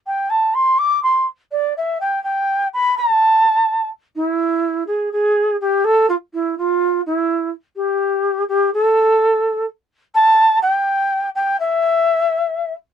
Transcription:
X:1
M:6/8
L:1/8
Q:3/8=83
K:Am
V:1 name="Quena"
g a c' d' c' z | d e g g2 b | a4 z E- | E2 ^G G2 =G |
A F E F2 E- | E z G3 G | A4 z2 | a2 g3 g |
e4- e z |]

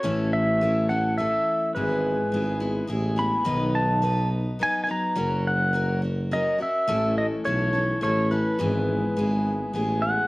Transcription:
X:1
M:3/4
L:1/16
Q:1/4=105
K:Alyd
V:1 name="Pedal steel guitar"
c2 e4 f2 e4 | B8 z2 b2- | b2 a4 z2 g3/2 g/2 ^a2- | ^a2 f4 z2 d2 e2- |
e2 d2 c4 c2 B2- | B8 z2 f2 |]
V:2 name="Steel-string acoustic guitar"
[A,,E,A,CEA]4 [A,CEA]2 [A,CEA]2 [A,CEA]4 | [G,,E,G,B,EG]4 [G,B,EG]2 [G,B,EG]2 [G,B,EG]2 [G,B,EG]2 | [B,,D,F,B,DB]4 [F,B,DB]4 [F,B,DB]2 [F,B,DB]2 | [F,CF^A]4 [F,CFA]2 [CFA]2 [F,CFA]2 [CFA]2 |
[A,,E,A,CEA]4 [A,CEA]2 [A,CEA]2 [A,CEA]2 [A,CEA]2 | [G,,E,G,B,EG]4 [G,B,EG]4 [G,B,EG]4 |]
V:3 name="Tuba" clef=bass
A,,,12 | G,,,4 G,,,4 A,,,4 | B,,,8- B,,,2 z2 | F,,,12 |
A,,,4 B,,,4 A,,,4 | G,,,4 G,,,4 A,,,4 |]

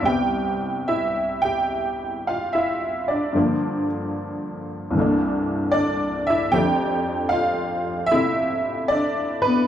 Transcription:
X:1
M:4/4
L:1/8
Q:"Swing" 1/4=75
K:C
V:1 name="Honky-tonk piano"
[Gg]2 [Ee] [Gg]2 [Ff] [Ee] [Dd]- | [Dd] z4 z [Dd] [Ee] | [Gg]2 [Ff]2 [Ee]2 [Dd] [B,B] |]
V:2 name="Honky-tonk piano" clef=bass
[C,,C,G,B,]8 | [G,,D,F,_B,]4 [C,,G,,E,A,B,D]4 | [F,,F,A,D]4 [C,A,E]4 |]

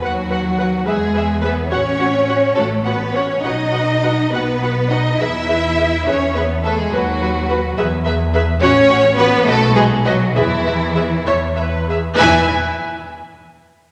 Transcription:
X:1
M:6/8
L:1/16
Q:3/8=69
K:E
V:1 name="Violin section"
f2 f2 f2 e2 e2 e2 | f2 f2 f2 f2 f2 f2 | f2 f2 f2 f2 f2 f2 | e2 e2 e2 e2 e2 e2 |
B2 B2 B2 e2 e2 e2 | f2 f2 f2 d2 d2 d2 | e2 e2 e2 e2 e2 e2 | g2 z8 z2 |]
V:2 name="Viola section"
B2 B2 B2 [GB]2 [GB]2 [GB]2 | [Fc]2 [Fc]2 [Fc]2 [Fc]2 [Fc]2 [Fc]2 | [FB]2 [FB]2 [FB]2 [FB]2 [FB]2 [FB]2 | [GB]2 [GB]2 [GB]2 [GB]2 [GB]2 [GB]2 |
[FB]2 [FB]2 [FB]2 [GB]2 [GB]2 [GB]2 | [Fc]2 [Fc]2 [Fc]2 [FB]2 [FB]2 [FB]2 | [GB]2 [GB]2 [GB]2 c2 B2 G2 | [EB]2 z8 z2 |]
V:3 name="Violin section"
F6 G4 B2 | c6 A2 B2 c2 | d6 B4 d2 | e6 c2 B2 A G |
F6 z6 | c4 B2 A2 G2 F2 | E6 z6 | e2 z8 z2 |]
V:4 name="Cello section"
F,6 G,4 B,2 | C6 A,2 B,2 C2 | D6 B,4 D2 | E6 C2 B,2 A, G, |
F,6 z6 | C4 B,2 A,2 G,2 F,2 | E,6 z6 | E,2 z8 z2 |]
V:5 name="Double bass section" clef=bass
D,,6 E,,6 | A,,,6 A,,,6 | B,,,6 B,,,6 | E,,6 E,,6 |
D,,6 E,,6 | A,,,6 B,,,6 | E,,6 E,,6 | E,,2 z8 z2 |]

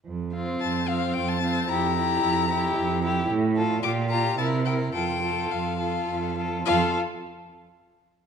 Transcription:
X:1
M:3/4
L:1/16
Q:1/4=109
K:F
V:1 name="Violin"
z4 a2 f2 g a3 | b8- b2 z2 | z4 d'2 b2 a2 g2 | g4 f6 z2 |
f2 z8 z2 |]
V:2 name="Violin"
z2 F4 F4 F2 | G2 G4 G4 G2 | z2 A2 G2 G2 B2 B2 | A2 A4 A4 A2 |
A2 z8 z2 |]
V:3 name="Viola"
z2 C4 C4 C2 | E2 E4 E4 E2 | z2 F2 F2 F2 E2 E2 | F2 F4 F4 F2 |
F2 z8 z2 |]
V:4 name="Cello" clef=bass
F,,4 F,,4 F,,4 | F,,4 F,,4 F,,4 | A,,4 B,,4 C,4 | F,,4 F,,4 F,,4 |
F,,2 z8 z2 |]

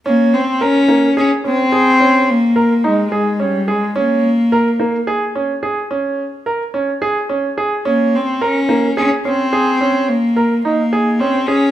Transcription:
X:1
M:7/4
L:1/8
Q:1/4=108
K:Bbdor
V:1 name="Grand piano"
D2 B B, A D A D2 B E A D A | D2 B B, A D A D2 B D A D A | D2 B B, A D A D2 B E A D A |]
V:2 name="Cello"
B, C D2 D C3 B,2 A,2 G, A, | B,4 z8 z2 | B, C D2 D C3 B,2 B,2 C D |]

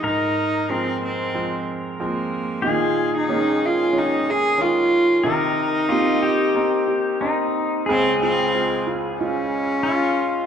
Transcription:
X:1
M:4/4
L:1/16
Q:1/4=92
K:Dblyd
V:1 name="Pedal steel guitar"
B16 | A16 | B4 F2 G6 E4 | A12 F4 |]
V:2 name="Cello"
E4 C2 C4 z2 B,4 | F3 E3 F2 E2 A2 F4 | E12 z4 | C2 C4 z2 D8 |]
V:3 name="Felt piano"
z16 | E,4 [B,DA]4 D2 A6 | E,4 [B,CG]4 C2 G6 | A,2 [A,CF]4 F2 [A,F]8 |]
V:4 name="Grand piano" clef=bass
A,,4 [F,A,C]4 [F,A,C]4 [F,A,C]4 | B,,4 [E,A,D]4 [E,A,D]4 [E,A,D]4 | C,4 [B,CE]4 [B,CE]4 [B,CE]4 | [D,,D,]4 [A,Fc]12 |]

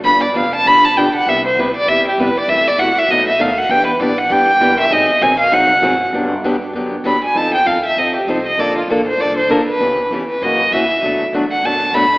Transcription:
X:1
M:4/4
L:1/16
Q:"Swing" 1/4=197
K:G
V:1 name="Violin"
b2 d2 =f2 a2 b2 a2 g2 ^f2 | e2 c2 B2 d2 e2 G2 B2 d2 | e2 d2 f2 e2 ^d2 e2 =f2 ^f2 | g2 B2 d2 f2 g6 e2 |
_e4 _a2 =f2 _g6- g z | z12 b2 _a2 | a2 g2 =f2 e2 _e2 G2 c2 e2 | d2 =F2 A2 c2 d2 c2 _B2 =B2- |
B4 z2 B2 _e4 =e4- | e2 z4 f2 a4 b4 |]
V:2 name="Steel-string acoustic guitar"
[D,=F,B,DG]2 z2 [D,F,B,DG]2 z2 [D,F,B,DG]2 z2 [D,F,B,DG]2 z2 | [C,G,B,EG]2 z2 [C,G,B,EG]2 z2 [C,G,B,EG]2 z2 [C,G,B,EG]2 z2 | [C,E,A,EF]2 z2 [C,E,A,EF]2 z2 [B,,F,A,^DF]2 z2 [B,,F,A,DF]2 z2 | [E,B,DG]2 z2 [E,B,DG]2 z2 [E,B,DG]2 z2 [E,B,DG]2 z2 |
[_E,_G,C_E_A]2 z2 [E,G,CEA]2 z2 [E,G,CEA]2 z2 [E,G,CEA]2 z2 | [D,F,B,DG]2 z2 [D,F,B,DG]2 z2 [D,F,B,DG]2 z2 [D,F,B,DG]2 z2 | [=F,C_EA]2 z2 [F,CEA]2 z2 [F,CEA]2 z2 [F,CEA]2 z2 | [D,=F,_B,DA]2 z2 [D,F,B,DA]2 z2 [D,F,B,DA]2 z2 [D,F,B,DA]2 z2 |
[^C,E,B,^CG]2 z2 [C,E,B,CG]2 z2 [C,E,^A,CF]2 z2 [C,E,A,CF]2 z2 | [B,,F,A,DF]2 z2 [B,,F,A,DF]2 z2 [B,,F,A,DF]2 z2 [B,,F,A,DF]2 z2 |]
V:3 name="Upright bass" clef=bass
G,,,4 =F,,,4 A,,,4 B,,,4 | C,,4 D,,4 E,,4 =F,,4 | F,,2 z2 E,,2 z2 B,,,4 ^D,,4 | E,,4 A,,,4 G,,,4 F,,,4 |
_A,,,2 z2 _B,,,4 C,,4 A,,,4 | G,,,4 G,,4 F,,4 D,,4 | =F,,4 _E,,4 D,,4 C,,4 | _B,,,4 A,,,4 C,,4 D,,4 |
^C,,4 E,,4 F,,4 _E,,4 | D,,4 E,,4 F,,4 A,,4 |]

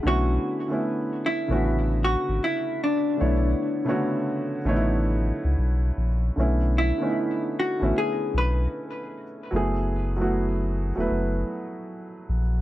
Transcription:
X:1
M:4/4
L:1/16
Q:"Swing 16ths" 1/4=76
K:Bdor
V:1 name="Hollow-body jazz guitar"
F4 z2 E4 F2 E2 D2- | D12 z4 | z2 E4 F2 G2 B4 z2 | z16 |]
V:2 name="Upright piano"
[D,A,B,CE]3 [D,A,B,CE]4 [C,D,A,B,CF]6- [C,D,A,B,CF] z2 | [D,A,B,Ec]3 [C,D,A,B,Fc]4 [D,A,B,^DEc]6- [=D,A,B,^DEc] z2 | [D,A,B,CE]3 [D,A,B,C^DE]4 [=D,A,B,CE]6- [D,A,B,CE] z2 | [F,A,B,EG]3 [F,A,B,EF]4 [F,A,B,EB]6- [F,A,B,EB] z2 |]
V:3 name="Sub bass" clef=bass
B,,,2 z4 z A,,,4 G,,, z4 | B,,,2 z4 z A,,,4 C,, B,,,2 ^A,,,2 | B,,,3 z4 A,,, z2 B,,,2 z4 | F,,,6- F,,, E,,, F,,,2 z4 ^A,,,2 |]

